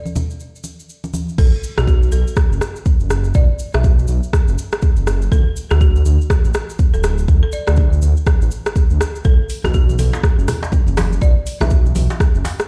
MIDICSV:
0, 0, Header, 1, 5, 480
1, 0, Start_track
1, 0, Key_signature, 2, "minor"
1, 0, Tempo, 491803
1, 1350, Time_signature, 4, 2, 24, 8
1, 12375, End_track
2, 0, Start_track
2, 0, Title_t, "Marimba"
2, 0, Program_c, 0, 12
2, 1352, Note_on_c, 0, 69, 90
2, 1519, Note_off_c, 0, 69, 0
2, 1739, Note_on_c, 0, 66, 86
2, 1798, Note_off_c, 0, 66, 0
2, 1833, Note_on_c, 0, 66, 74
2, 1923, Note_off_c, 0, 66, 0
2, 2070, Note_on_c, 0, 69, 90
2, 2237, Note_off_c, 0, 69, 0
2, 3269, Note_on_c, 0, 74, 92
2, 3437, Note_off_c, 0, 74, 0
2, 3656, Note_on_c, 0, 76, 88
2, 3991, Note_off_c, 0, 76, 0
2, 5192, Note_on_c, 0, 69, 95
2, 5358, Note_off_c, 0, 69, 0
2, 5569, Note_on_c, 0, 66, 88
2, 5633, Note_off_c, 0, 66, 0
2, 5671, Note_on_c, 0, 66, 76
2, 5763, Note_off_c, 0, 66, 0
2, 6770, Note_on_c, 0, 69, 89
2, 6904, Note_off_c, 0, 69, 0
2, 7250, Note_on_c, 0, 69, 94
2, 7329, Note_off_c, 0, 69, 0
2, 7348, Note_on_c, 0, 74, 87
2, 7441, Note_off_c, 0, 74, 0
2, 7484, Note_on_c, 0, 74, 74
2, 7550, Note_off_c, 0, 74, 0
2, 9028, Note_on_c, 0, 69, 93
2, 9196, Note_off_c, 0, 69, 0
2, 9416, Note_on_c, 0, 66, 89
2, 9476, Note_off_c, 0, 66, 0
2, 9508, Note_on_c, 0, 66, 76
2, 9601, Note_off_c, 0, 66, 0
2, 9750, Note_on_c, 0, 69, 89
2, 9917, Note_off_c, 0, 69, 0
2, 10947, Note_on_c, 0, 74, 95
2, 11116, Note_off_c, 0, 74, 0
2, 11331, Note_on_c, 0, 76, 90
2, 11669, Note_off_c, 0, 76, 0
2, 12375, End_track
3, 0, Start_track
3, 0, Title_t, "Detuned saw bass"
3, 0, Program_c, 1, 39
3, 1350, Note_on_c, 1, 35, 99
3, 1469, Note_off_c, 1, 35, 0
3, 1735, Note_on_c, 1, 35, 99
3, 2044, Note_off_c, 1, 35, 0
3, 2072, Note_on_c, 1, 35, 83
3, 2189, Note_off_c, 1, 35, 0
3, 2456, Note_on_c, 1, 30, 103
3, 2534, Note_off_c, 1, 30, 0
3, 2935, Note_on_c, 1, 30, 83
3, 3244, Note_off_c, 1, 30, 0
3, 3270, Note_on_c, 1, 35, 96
3, 3388, Note_off_c, 1, 35, 0
3, 3652, Note_on_c, 1, 35, 97
3, 3962, Note_off_c, 1, 35, 0
3, 3987, Note_on_c, 1, 35, 83
3, 4107, Note_off_c, 1, 35, 0
3, 4371, Note_on_c, 1, 30, 102
3, 4452, Note_off_c, 1, 30, 0
3, 4851, Note_on_c, 1, 30, 85
3, 5162, Note_off_c, 1, 30, 0
3, 5190, Note_on_c, 1, 38, 100
3, 5308, Note_off_c, 1, 38, 0
3, 5573, Note_on_c, 1, 38, 98
3, 5883, Note_off_c, 1, 38, 0
3, 5909, Note_on_c, 1, 38, 85
3, 6028, Note_off_c, 1, 38, 0
3, 6291, Note_on_c, 1, 33, 102
3, 6372, Note_off_c, 1, 33, 0
3, 6774, Note_on_c, 1, 26, 83
3, 7083, Note_off_c, 1, 26, 0
3, 7108, Note_on_c, 1, 38, 99
3, 7228, Note_off_c, 1, 38, 0
3, 7495, Note_on_c, 1, 38, 96
3, 7804, Note_off_c, 1, 38, 0
3, 7829, Note_on_c, 1, 38, 83
3, 7948, Note_off_c, 1, 38, 0
3, 8214, Note_on_c, 1, 33, 104
3, 8293, Note_off_c, 1, 33, 0
3, 8692, Note_on_c, 1, 38, 97
3, 8772, Note_off_c, 1, 38, 0
3, 9028, Note_on_c, 1, 35, 100
3, 9147, Note_off_c, 1, 35, 0
3, 9411, Note_on_c, 1, 35, 101
3, 9722, Note_off_c, 1, 35, 0
3, 9749, Note_on_c, 1, 35, 82
3, 9868, Note_off_c, 1, 35, 0
3, 10131, Note_on_c, 1, 30, 106
3, 10212, Note_off_c, 1, 30, 0
3, 10611, Note_on_c, 1, 30, 85
3, 10922, Note_off_c, 1, 30, 0
3, 10949, Note_on_c, 1, 35, 99
3, 11068, Note_off_c, 1, 35, 0
3, 11333, Note_on_c, 1, 35, 98
3, 11643, Note_off_c, 1, 35, 0
3, 11671, Note_on_c, 1, 35, 83
3, 11789, Note_off_c, 1, 35, 0
3, 12055, Note_on_c, 1, 30, 104
3, 12134, Note_off_c, 1, 30, 0
3, 12375, End_track
4, 0, Start_track
4, 0, Title_t, "Djembe"
4, 9413, Note_on_c, 9, 64, 86
4, 9511, Note_off_c, 9, 64, 0
4, 9890, Note_on_c, 9, 62, 85
4, 9987, Note_off_c, 9, 62, 0
4, 10370, Note_on_c, 9, 63, 78
4, 10373, Note_on_c, 9, 62, 83
4, 10468, Note_off_c, 9, 63, 0
4, 10470, Note_off_c, 9, 62, 0
4, 10712, Note_on_c, 9, 62, 103
4, 10809, Note_off_c, 9, 62, 0
4, 11333, Note_on_c, 9, 62, 76
4, 11338, Note_on_c, 9, 64, 96
4, 11430, Note_off_c, 9, 62, 0
4, 11435, Note_off_c, 9, 64, 0
4, 11670, Note_on_c, 9, 63, 56
4, 11767, Note_off_c, 9, 63, 0
4, 11813, Note_on_c, 9, 62, 78
4, 11911, Note_off_c, 9, 62, 0
4, 12147, Note_on_c, 9, 63, 93
4, 12149, Note_on_c, 9, 62, 88
4, 12244, Note_off_c, 9, 63, 0
4, 12247, Note_off_c, 9, 62, 0
4, 12375, End_track
5, 0, Start_track
5, 0, Title_t, "Drums"
5, 54, Note_on_c, 9, 63, 55
5, 60, Note_on_c, 9, 69, 34
5, 152, Note_off_c, 9, 63, 0
5, 152, Note_on_c, 9, 63, 56
5, 153, Note_on_c, 9, 64, 77
5, 155, Note_off_c, 9, 69, 0
5, 155, Note_on_c, 9, 69, 76
5, 156, Note_on_c, 9, 62, 54
5, 249, Note_off_c, 9, 63, 0
5, 251, Note_off_c, 9, 64, 0
5, 253, Note_off_c, 9, 69, 0
5, 254, Note_off_c, 9, 62, 0
5, 297, Note_on_c, 9, 69, 34
5, 389, Note_off_c, 9, 69, 0
5, 389, Note_on_c, 9, 69, 43
5, 486, Note_off_c, 9, 69, 0
5, 543, Note_on_c, 9, 69, 31
5, 623, Note_off_c, 9, 69, 0
5, 623, Note_on_c, 9, 62, 35
5, 623, Note_on_c, 9, 69, 77
5, 720, Note_off_c, 9, 62, 0
5, 721, Note_off_c, 9, 69, 0
5, 777, Note_on_c, 9, 69, 36
5, 872, Note_off_c, 9, 69, 0
5, 872, Note_on_c, 9, 69, 43
5, 970, Note_off_c, 9, 69, 0
5, 1014, Note_on_c, 9, 62, 49
5, 1018, Note_on_c, 9, 69, 33
5, 1108, Note_on_c, 9, 63, 82
5, 1110, Note_off_c, 9, 69, 0
5, 1110, Note_on_c, 9, 69, 79
5, 1112, Note_off_c, 9, 62, 0
5, 1206, Note_off_c, 9, 63, 0
5, 1208, Note_off_c, 9, 69, 0
5, 1256, Note_on_c, 9, 69, 34
5, 1350, Note_on_c, 9, 36, 116
5, 1351, Note_on_c, 9, 49, 101
5, 1354, Note_off_c, 9, 69, 0
5, 1355, Note_on_c, 9, 69, 52
5, 1448, Note_off_c, 9, 36, 0
5, 1448, Note_off_c, 9, 49, 0
5, 1452, Note_off_c, 9, 69, 0
5, 1596, Note_on_c, 9, 69, 85
5, 1693, Note_off_c, 9, 69, 0
5, 1734, Note_on_c, 9, 37, 96
5, 1737, Note_on_c, 9, 69, 37
5, 1830, Note_on_c, 9, 36, 103
5, 1831, Note_off_c, 9, 37, 0
5, 1834, Note_off_c, 9, 69, 0
5, 1834, Note_on_c, 9, 69, 50
5, 1927, Note_off_c, 9, 36, 0
5, 1932, Note_off_c, 9, 69, 0
5, 1978, Note_on_c, 9, 69, 35
5, 2069, Note_off_c, 9, 69, 0
5, 2069, Note_on_c, 9, 69, 95
5, 2166, Note_off_c, 9, 69, 0
5, 2220, Note_on_c, 9, 69, 43
5, 2306, Note_off_c, 9, 69, 0
5, 2306, Note_on_c, 9, 69, 55
5, 2310, Note_on_c, 9, 36, 119
5, 2311, Note_on_c, 9, 37, 93
5, 2404, Note_off_c, 9, 69, 0
5, 2407, Note_off_c, 9, 36, 0
5, 2408, Note_off_c, 9, 37, 0
5, 2463, Note_on_c, 9, 69, 37
5, 2550, Note_on_c, 9, 37, 91
5, 2553, Note_off_c, 9, 69, 0
5, 2553, Note_on_c, 9, 69, 86
5, 2648, Note_off_c, 9, 37, 0
5, 2650, Note_off_c, 9, 69, 0
5, 2693, Note_on_c, 9, 69, 39
5, 2789, Note_off_c, 9, 69, 0
5, 2789, Note_on_c, 9, 36, 107
5, 2789, Note_on_c, 9, 69, 51
5, 2886, Note_off_c, 9, 69, 0
5, 2887, Note_off_c, 9, 36, 0
5, 2929, Note_on_c, 9, 69, 33
5, 3027, Note_off_c, 9, 69, 0
5, 3028, Note_on_c, 9, 69, 92
5, 3030, Note_on_c, 9, 37, 92
5, 3126, Note_off_c, 9, 69, 0
5, 3128, Note_off_c, 9, 37, 0
5, 3164, Note_on_c, 9, 69, 37
5, 3261, Note_off_c, 9, 69, 0
5, 3262, Note_on_c, 9, 69, 57
5, 3269, Note_on_c, 9, 36, 120
5, 3360, Note_off_c, 9, 69, 0
5, 3367, Note_off_c, 9, 36, 0
5, 3504, Note_on_c, 9, 69, 103
5, 3602, Note_off_c, 9, 69, 0
5, 3649, Note_on_c, 9, 69, 43
5, 3654, Note_on_c, 9, 37, 98
5, 3746, Note_off_c, 9, 69, 0
5, 3749, Note_on_c, 9, 69, 57
5, 3750, Note_on_c, 9, 36, 111
5, 3752, Note_off_c, 9, 37, 0
5, 3846, Note_off_c, 9, 69, 0
5, 3847, Note_off_c, 9, 36, 0
5, 3892, Note_on_c, 9, 69, 36
5, 3978, Note_off_c, 9, 69, 0
5, 3978, Note_on_c, 9, 69, 101
5, 4075, Note_off_c, 9, 69, 0
5, 4131, Note_on_c, 9, 69, 41
5, 4229, Note_off_c, 9, 69, 0
5, 4229, Note_on_c, 9, 36, 127
5, 4229, Note_on_c, 9, 37, 97
5, 4234, Note_on_c, 9, 69, 53
5, 4326, Note_off_c, 9, 36, 0
5, 4327, Note_off_c, 9, 37, 0
5, 4331, Note_off_c, 9, 69, 0
5, 4372, Note_on_c, 9, 69, 35
5, 4469, Note_off_c, 9, 69, 0
5, 4473, Note_on_c, 9, 69, 95
5, 4571, Note_off_c, 9, 69, 0
5, 4607, Note_on_c, 9, 69, 38
5, 4613, Note_on_c, 9, 37, 99
5, 4705, Note_off_c, 9, 69, 0
5, 4705, Note_on_c, 9, 69, 50
5, 4709, Note_on_c, 9, 36, 108
5, 4711, Note_off_c, 9, 37, 0
5, 4803, Note_off_c, 9, 69, 0
5, 4807, Note_off_c, 9, 36, 0
5, 4846, Note_on_c, 9, 69, 42
5, 4944, Note_off_c, 9, 69, 0
5, 4949, Note_on_c, 9, 69, 101
5, 4950, Note_on_c, 9, 37, 94
5, 5047, Note_off_c, 9, 37, 0
5, 5047, Note_off_c, 9, 69, 0
5, 5094, Note_on_c, 9, 69, 38
5, 5189, Note_on_c, 9, 36, 124
5, 5191, Note_off_c, 9, 69, 0
5, 5196, Note_on_c, 9, 69, 60
5, 5287, Note_off_c, 9, 36, 0
5, 5294, Note_off_c, 9, 69, 0
5, 5431, Note_on_c, 9, 69, 99
5, 5529, Note_off_c, 9, 69, 0
5, 5567, Note_on_c, 9, 69, 38
5, 5574, Note_on_c, 9, 37, 98
5, 5665, Note_off_c, 9, 69, 0
5, 5669, Note_on_c, 9, 36, 111
5, 5669, Note_on_c, 9, 69, 54
5, 5672, Note_off_c, 9, 37, 0
5, 5767, Note_off_c, 9, 36, 0
5, 5767, Note_off_c, 9, 69, 0
5, 5815, Note_on_c, 9, 69, 37
5, 5909, Note_off_c, 9, 69, 0
5, 5909, Note_on_c, 9, 69, 101
5, 6007, Note_off_c, 9, 69, 0
5, 6062, Note_on_c, 9, 69, 41
5, 6149, Note_on_c, 9, 36, 125
5, 6150, Note_on_c, 9, 37, 98
5, 6153, Note_off_c, 9, 69, 0
5, 6153, Note_on_c, 9, 69, 55
5, 6247, Note_off_c, 9, 36, 0
5, 6247, Note_off_c, 9, 37, 0
5, 6250, Note_off_c, 9, 69, 0
5, 6292, Note_on_c, 9, 69, 40
5, 6382, Note_off_c, 9, 69, 0
5, 6382, Note_on_c, 9, 69, 96
5, 6390, Note_on_c, 9, 37, 97
5, 6480, Note_off_c, 9, 69, 0
5, 6488, Note_off_c, 9, 37, 0
5, 6535, Note_on_c, 9, 69, 42
5, 6627, Note_off_c, 9, 69, 0
5, 6627, Note_on_c, 9, 69, 57
5, 6629, Note_on_c, 9, 36, 112
5, 6724, Note_off_c, 9, 69, 0
5, 6726, Note_off_c, 9, 36, 0
5, 6772, Note_on_c, 9, 69, 38
5, 6868, Note_off_c, 9, 69, 0
5, 6868, Note_on_c, 9, 69, 104
5, 6869, Note_on_c, 9, 37, 97
5, 6965, Note_off_c, 9, 69, 0
5, 6967, Note_off_c, 9, 37, 0
5, 7009, Note_on_c, 9, 69, 44
5, 7106, Note_off_c, 9, 69, 0
5, 7107, Note_on_c, 9, 69, 59
5, 7108, Note_on_c, 9, 36, 121
5, 7205, Note_off_c, 9, 69, 0
5, 7206, Note_off_c, 9, 36, 0
5, 7341, Note_on_c, 9, 69, 91
5, 7438, Note_off_c, 9, 69, 0
5, 7489, Note_on_c, 9, 69, 41
5, 7491, Note_on_c, 9, 37, 97
5, 7576, Note_off_c, 9, 69, 0
5, 7576, Note_on_c, 9, 69, 50
5, 7588, Note_off_c, 9, 37, 0
5, 7588, Note_on_c, 9, 36, 107
5, 7674, Note_off_c, 9, 69, 0
5, 7686, Note_off_c, 9, 36, 0
5, 7736, Note_on_c, 9, 69, 40
5, 7827, Note_off_c, 9, 69, 0
5, 7827, Note_on_c, 9, 69, 101
5, 7925, Note_off_c, 9, 69, 0
5, 7972, Note_on_c, 9, 69, 39
5, 8067, Note_off_c, 9, 69, 0
5, 8067, Note_on_c, 9, 36, 126
5, 8067, Note_on_c, 9, 69, 55
5, 8071, Note_on_c, 9, 37, 94
5, 8165, Note_off_c, 9, 36, 0
5, 8165, Note_off_c, 9, 69, 0
5, 8169, Note_off_c, 9, 37, 0
5, 8214, Note_on_c, 9, 69, 38
5, 8307, Note_off_c, 9, 69, 0
5, 8307, Note_on_c, 9, 69, 100
5, 8404, Note_off_c, 9, 69, 0
5, 8453, Note_on_c, 9, 69, 41
5, 8455, Note_on_c, 9, 37, 96
5, 8547, Note_on_c, 9, 36, 111
5, 8548, Note_off_c, 9, 69, 0
5, 8548, Note_on_c, 9, 69, 60
5, 8552, Note_off_c, 9, 37, 0
5, 8645, Note_off_c, 9, 36, 0
5, 8646, Note_off_c, 9, 69, 0
5, 8688, Note_on_c, 9, 69, 39
5, 8785, Note_off_c, 9, 69, 0
5, 8791, Note_on_c, 9, 37, 97
5, 8794, Note_on_c, 9, 69, 97
5, 8888, Note_off_c, 9, 37, 0
5, 8892, Note_off_c, 9, 69, 0
5, 8935, Note_on_c, 9, 69, 39
5, 9024, Note_off_c, 9, 69, 0
5, 9024, Note_on_c, 9, 69, 51
5, 9027, Note_on_c, 9, 36, 119
5, 9029, Note_on_c, 9, 62, 48
5, 9121, Note_off_c, 9, 69, 0
5, 9125, Note_off_c, 9, 36, 0
5, 9127, Note_off_c, 9, 62, 0
5, 9266, Note_on_c, 9, 69, 95
5, 9270, Note_on_c, 9, 46, 86
5, 9363, Note_off_c, 9, 69, 0
5, 9367, Note_off_c, 9, 46, 0
5, 9410, Note_on_c, 9, 63, 61
5, 9413, Note_on_c, 9, 62, 37
5, 9414, Note_on_c, 9, 37, 94
5, 9415, Note_on_c, 9, 69, 36
5, 9506, Note_off_c, 9, 69, 0
5, 9506, Note_on_c, 9, 69, 59
5, 9508, Note_off_c, 9, 63, 0
5, 9508, Note_on_c, 9, 36, 102
5, 9511, Note_off_c, 9, 37, 0
5, 9511, Note_off_c, 9, 62, 0
5, 9604, Note_off_c, 9, 69, 0
5, 9606, Note_off_c, 9, 36, 0
5, 9656, Note_on_c, 9, 63, 62
5, 9656, Note_on_c, 9, 69, 39
5, 9747, Note_off_c, 9, 69, 0
5, 9747, Note_on_c, 9, 69, 100
5, 9748, Note_off_c, 9, 63, 0
5, 9748, Note_on_c, 9, 63, 68
5, 9750, Note_on_c, 9, 46, 77
5, 9751, Note_on_c, 9, 62, 46
5, 9844, Note_off_c, 9, 69, 0
5, 9846, Note_off_c, 9, 63, 0
5, 9847, Note_off_c, 9, 46, 0
5, 9848, Note_off_c, 9, 62, 0
5, 9898, Note_on_c, 9, 69, 37
5, 9989, Note_on_c, 9, 36, 121
5, 9990, Note_on_c, 9, 37, 93
5, 9994, Note_off_c, 9, 69, 0
5, 9994, Note_on_c, 9, 69, 56
5, 10087, Note_off_c, 9, 36, 0
5, 10088, Note_off_c, 9, 37, 0
5, 10091, Note_off_c, 9, 69, 0
5, 10140, Note_on_c, 9, 69, 38
5, 10229, Note_on_c, 9, 37, 93
5, 10229, Note_on_c, 9, 46, 87
5, 10230, Note_off_c, 9, 69, 0
5, 10230, Note_on_c, 9, 69, 96
5, 10231, Note_on_c, 9, 62, 37
5, 10232, Note_on_c, 9, 64, 88
5, 10327, Note_off_c, 9, 37, 0
5, 10327, Note_off_c, 9, 46, 0
5, 10328, Note_off_c, 9, 69, 0
5, 10329, Note_off_c, 9, 62, 0
5, 10330, Note_off_c, 9, 64, 0
5, 10382, Note_on_c, 9, 69, 43
5, 10462, Note_on_c, 9, 64, 95
5, 10469, Note_on_c, 9, 36, 106
5, 10472, Note_off_c, 9, 69, 0
5, 10472, Note_on_c, 9, 69, 51
5, 10560, Note_off_c, 9, 64, 0
5, 10567, Note_off_c, 9, 36, 0
5, 10569, Note_off_c, 9, 69, 0
5, 10606, Note_on_c, 9, 63, 67
5, 10613, Note_on_c, 9, 69, 38
5, 10620, Note_on_c, 9, 62, 49
5, 10704, Note_off_c, 9, 63, 0
5, 10709, Note_off_c, 9, 69, 0
5, 10709, Note_on_c, 9, 37, 92
5, 10709, Note_on_c, 9, 46, 78
5, 10709, Note_on_c, 9, 69, 97
5, 10717, Note_on_c, 9, 63, 94
5, 10718, Note_off_c, 9, 62, 0
5, 10806, Note_off_c, 9, 69, 0
5, 10807, Note_off_c, 9, 37, 0
5, 10807, Note_off_c, 9, 46, 0
5, 10815, Note_off_c, 9, 63, 0
5, 10858, Note_on_c, 9, 69, 41
5, 10944, Note_on_c, 9, 62, 53
5, 10948, Note_on_c, 9, 36, 117
5, 10951, Note_off_c, 9, 69, 0
5, 10951, Note_on_c, 9, 69, 50
5, 11041, Note_off_c, 9, 62, 0
5, 11046, Note_off_c, 9, 36, 0
5, 11049, Note_off_c, 9, 69, 0
5, 11189, Note_on_c, 9, 69, 88
5, 11191, Note_on_c, 9, 46, 84
5, 11287, Note_off_c, 9, 69, 0
5, 11289, Note_off_c, 9, 46, 0
5, 11327, Note_on_c, 9, 62, 39
5, 11328, Note_on_c, 9, 63, 70
5, 11333, Note_on_c, 9, 37, 91
5, 11335, Note_on_c, 9, 69, 40
5, 11338, Note_on_c, 9, 64, 75
5, 11423, Note_off_c, 9, 69, 0
5, 11423, Note_on_c, 9, 69, 52
5, 11424, Note_off_c, 9, 62, 0
5, 11426, Note_off_c, 9, 63, 0
5, 11429, Note_on_c, 9, 36, 103
5, 11431, Note_off_c, 9, 37, 0
5, 11436, Note_off_c, 9, 64, 0
5, 11520, Note_off_c, 9, 69, 0
5, 11526, Note_off_c, 9, 36, 0
5, 11570, Note_on_c, 9, 63, 59
5, 11575, Note_on_c, 9, 69, 34
5, 11664, Note_on_c, 9, 62, 54
5, 11665, Note_off_c, 9, 69, 0
5, 11665, Note_on_c, 9, 69, 90
5, 11666, Note_on_c, 9, 64, 80
5, 11668, Note_off_c, 9, 63, 0
5, 11669, Note_on_c, 9, 63, 61
5, 11671, Note_on_c, 9, 46, 78
5, 11762, Note_off_c, 9, 62, 0
5, 11763, Note_off_c, 9, 64, 0
5, 11763, Note_off_c, 9, 69, 0
5, 11767, Note_off_c, 9, 63, 0
5, 11768, Note_off_c, 9, 46, 0
5, 11811, Note_on_c, 9, 69, 34
5, 11909, Note_off_c, 9, 69, 0
5, 11909, Note_on_c, 9, 36, 116
5, 11911, Note_on_c, 9, 37, 91
5, 11913, Note_on_c, 9, 69, 55
5, 12007, Note_off_c, 9, 36, 0
5, 12009, Note_off_c, 9, 37, 0
5, 12011, Note_off_c, 9, 69, 0
5, 12052, Note_on_c, 9, 69, 36
5, 12149, Note_off_c, 9, 69, 0
5, 12151, Note_on_c, 9, 69, 85
5, 12153, Note_on_c, 9, 46, 85
5, 12154, Note_on_c, 9, 62, 41
5, 12248, Note_off_c, 9, 69, 0
5, 12250, Note_off_c, 9, 46, 0
5, 12252, Note_off_c, 9, 62, 0
5, 12292, Note_on_c, 9, 69, 37
5, 12295, Note_on_c, 9, 37, 92
5, 12375, Note_off_c, 9, 37, 0
5, 12375, Note_off_c, 9, 69, 0
5, 12375, End_track
0, 0, End_of_file